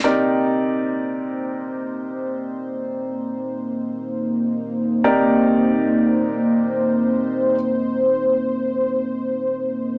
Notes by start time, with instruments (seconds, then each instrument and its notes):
0.04 grand piano C3 D#4 G4 A#4 D5, analog synth pad A#3 D#4 C5
5.04 grand piano C3 D#4 G4 A#4 D5